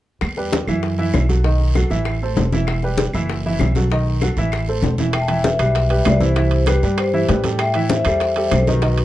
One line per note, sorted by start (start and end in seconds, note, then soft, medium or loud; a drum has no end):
0.21 0.64 E2 medium
0.21 high bongo medium
0.21 high conga soft
0.21 long guiro medium
0.21 claves medium
0.37 0.62 G3 medium
0.37 0.63 G4 medium
0.37 0.63 B4 medium
0.37 high bongo soft
0.37 high conga soft
0.52 high bongo medium
0.52 high conga medium
0.52 short guiro medium
0.67 1.10 F#2 medium
0.67 0.93 E3 medium
0.67 0.93 E4 medium
0.67 0.94 E5 medium
0.67 high bongo soft
0.67 high conga soft
0.67 short guiro medium
0.67 claves medium
0.83 high bongo medium
0.83 high conga soft
0.83 long guiro medium
0.98 1.24 E3 medium
0.98 1.24 E4 medium
0.98 1.24 E5 medium
0.98 high conga soft
1.14 1.85 B1 medium
1.14 high bongo soft
1.14 low bongo medium
1.14 high conga medium
1.14 short guiro medium
1.14 claves medium
1.29 1.42 F#3 medium
1.29 1.42 F#4 medium
1.29 1.42 A4 medium
1.29 high bongo soft
1.29 high conga medium
1.29 short guiro medium
1.44 1.70 D#3 medium
1.44 1.70 D#4 medium
1.44 1.70 D#5 medium
1.44 high bongo medium
1.44 high conga soft
1.44 long guiro medium
1.60 high bongo soft
1.60 high conga soft
1.75 1.89 F#3 medium
1.75 1.89 F#4 medium
1.75 1.89 A4 medium
1.75 high bongo medium
1.75 high conga medium
1.75 short guiro medium
1.75 claves medium
1.90 2.34 A1 medium
1.90 2.16 E3 medium
1.90 2.16 E4 medium
1.90 2.16 E5 medium
1.90 high bongo soft
1.90 high conga soft
1.90 short guiro medium
2.05 high bongo medium
2.05 high conga soft
2.05 long guiro medium
2.05 claves medium
2.22 2.47 A3 medium
2.22 2.48 A4 medium
2.22 2.48 C5 medium
2.22 high conga soft
2.37 3.08 E1 medium
2.37 high bongo soft
2.37 low bongo medium
2.37 high conga medium
2.37 short guiro medium
2.52 2.78 E3 medium
2.52 2.78 E4 medium
2.52 2.78 E5 medium
2.52 high bongo soft
2.52 high conga medium
2.52 short guiro medium
2.67 high bongo medium
2.67 high conga soft
2.67 long guiro medium
2.67 claves medium
2.83 3.09 G3 medium
2.83 3.09 G4 medium
2.83 3.09 B4 medium
2.83 high bongo soft
2.83 high conga soft
2.98 high bongo medium
2.98 high conga medium
2.98 short guiro medium
3.13 3.57 F#1 medium
3.13 3.39 E3 medium
3.13 3.40 E4 medium
3.13 3.40 E5 medium
3.13 high bongo soft
3.13 high conga soft
3.13 short guiro medium
3.13 claves medium
3.29 high bongo medium
3.29 high conga soft
3.29 long guiro medium
3.44 3.71 E3 medium
3.44 3.71 E4 medium
3.44 3.71 E5 medium
3.44 high conga soft
3.59 4.31 B1 medium
3.59 high bongo soft
3.59 low bongo medium
3.59 high conga medium
3.59 short guiro medium
3.59 claves medium
3.75 3.88 F#3 medium
3.75 3.88 F#4 medium
3.75 3.89 A4 medium
3.75 high bongo soft
3.75 high conga medium
3.75 short guiro medium
3.90 4.17 D#3 medium
3.90 4.17 D#4 medium
3.90 4.17 D#5 medium
3.90 high bongo medium
3.90 high conga soft
3.90 long guiro medium
4.06 high bongo soft
4.06 high conga soft
4.22 4.34 F#3 medium
4.22 4.34 F#4 medium
4.22 4.35 A4 medium
4.22 high bongo medium
4.22 high conga medium
4.22 short guiro medium
4.22 claves medium
4.36 4.80 A1 medium
4.36 4.63 E3 medium
4.36 4.63 E4 medium
4.36 4.63 E5 medium
4.36 high bongo soft
4.36 high conga soft
4.36 short guiro medium
4.52 high bongo medium
4.52 high conga soft
4.52 long guiro medium
4.52 claves medium
4.68 4.93 A3 medium
4.68 4.94 A4 medium
4.68 4.94 C5 medium
4.68 high conga soft
4.82 5.54 E1 medium
4.82 high bongo soft
4.82 low bongo medium
4.82 high conga medium
4.82 short guiro medium
4.98 5.11 E3 medium
4.98 5.12 E4 medium
4.98 5.12 E5 medium
4.98 high bongo soft
4.98 high conga medium
4.98 short guiro medium
5.13 5.21 E5 medium
5.13 5.20 G5 medium
5.13 high bongo medium
5.13 high conga soft
5.13 high timbale medium
5.13 long guiro medium
5.13 claves medium
5.21 5.28 A5 medium
5.27 5.54 E3 medium
5.27 5.54 E4 medium
5.27 5.43 E5 medium
5.27 5.54 E5 medium
5.27 5.43 G5 medium
5.27 high bongo soft
5.27 high conga soft
5.27 high timbale medium
5.44 5.73 B4 medium
5.44 5.73 E5 medium
5.44 high bongo medium
5.44 high conga medium
5.44 short guiro medium
5.59 6.02 B1 medium
5.59 5.85 G3 medium
5.59 5.85 G4 medium
5.59 5.85 B4 medium
5.59 high bongo soft
5.59 high conga soft
5.59 high timbale medium
5.59 short guiro medium
5.59 claves medium
5.75 6.01 B4 medium
5.75 6.00 E5 medium
5.75 high bongo medium
5.75 high conga soft
5.75 high timbale medium
5.75 long guiro medium
5.90 6.15 G3 medium
5.90 6.15 G4 medium
5.90 6.16 B4 medium
5.90 high conga soft
5.90 high timbale medium
6.01 6.12 D5 medium
6.01 6.05 E5 medium
6.05 6.77 C2 medium
6.05 6.13 B4 medium
6.05 high bongo soft
6.05 low bongo medium
6.05 high conga medium
6.05 high timbale medium
6.05 low timbale medium
6.05 short guiro medium
6.05 claves medium
6.20 6.33 E3 medium
6.20 6.33 E4 medium
6.20 6.65 G4 medium
6.20 6.64 C5 medium
6.20 6.33 E5 medium
6.20 high bongo soft
6.20 high conga medium
6.20 short guiro medium
6.36 6.62 E3 medium
6.36 6.62 E4 medium
6.36 6.62 E5 medium
6.36 high bongo medium
6.36 high conga soft
6.36 high timbale medium
6.36 long guiro medium
6.51 high bongo soft
6.51 high conga soft
6.51 high timbale medium
6.66 6.80 G3 medium
6.66 6.81 G4 medium
6.66 6.97 G4 medium
6.66 6.99 B4 medium
6.66 6.81 B4 medium
6.66 high bongo medium
6.66 high conga medium
6.66 high timbale medium
6.66 short guiro medium
6.66 claves medium
6.83 7.26 G2 medium
6.83 7.08 G3 medium
6.83 7.09 G4 medium
6.83 7.09 B4 medium
6.83 high bongo soft
6.83 high conga soft
6.83 short guiro medium
6.97 7.42 G4 medium
6.97 7.41 C5 medium
6.97 high bongo medium
6.97 high conga soft
6.97 high timbale medium
6.97 long guiro medium
6.97 claves medium
7.13 7.26 E3 medium
7.13 7.26 E4 medium
7.13 7.27 E5 medium
7.13 high conga soft
7.28 8.00 A2 medium
7.28 7.41 G3 medium
7.28 7.42 G4 medium
7.28 7.42 B4 medium
7.28 high bongo soft
7.28 low bongo medium
7.28 high conga medium
7.28 high timbale medium
7.28 short guiro medium
7.44 7.69 G3 medium
7.44 7.70 G4 medium
7.44 7.70 A4 medium
7.44 high bongo soft
7.44 high conga medium
7.44 high timbale medium
7.44 short guiro medium
7.58 7.88 E5 medium
7.58 7.88 G5 medium
7.58 high bongo medium
7.58 high conga soft
7.58 high timbale medium
7.58 long guiro medium
7.58 claves medium
7.74 8.00 E3 medium
7.74 8.01 E4 medium
7.74 8.00 E5 medium
7.74 high bongo soft
7.74 high conga soft
7.74 high timbale medium
7.89 8.19 C5 medium
7.89 8.18 E5 medium
7.89 high bongo medium
7.89 high conga medium
7.89 short guiro medium
8.05 8.48 E2 medium
8.05 8.31 G3 medium
8.05 8.31 G4 medium
8.05 8.31 A4 medium
8.05 high bongo soft
8.05 high conga soft
8.05 high timbale medium
8.05 short guiro medium
8.05 claves medium
8.20 8.50 C5 medium
8.20 8.50 E5 medium
8.20 high bongo medium
8.20 high conga soft
8.20 high timbale medium
8.20 long guiro medium
8.36 8.62 G3 medium
8.36 8.62 G4 medium
8.36 8.62 A4 medium
8.36 high conga soft
8.36 high timbale medium
8.51 9.05 B1 medium
8.51 8.59 A4 medium
8.51 8.58 C5 medium
8.51 high bongo soft
8.51 low bongo medium
8.51 high conga medium
8.51 high timbale medium
8.51 short guiro medium
8.51 claves medium
8.66 8.80 D#3 medium
8.66 8.80 D#4 medium
8.66 9.05 F#4 medium
8.66 9.05 B4 medium
8.66 8.81 D#5 medium
8.66 high bongo soft
8.66 high conga medium
8.66 short guiro medium
8.82 9.05 D#3 medium
8.82 9.05 D#4 medium
8.82 9.05 D#5 medium
8.82 high bongo medium
8.82 high timbale medium
8.82 long guiro medium
8.98 high bongo soft
8.98 high conga soft
8.98 high timbale medium